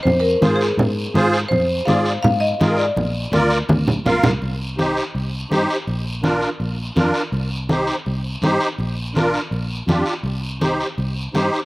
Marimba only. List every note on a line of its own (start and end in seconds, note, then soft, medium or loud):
0.03 0.12 C5 loud
0.20 0.59 A#4 medium
0.56 1.27 G#4 medium
1.49 1.87 C5 loud
1.85 2.20 F5 loud
2.23 2.40 F5 loud
2.40 2.75 D#5 loud
2.77 3.46 D5 medium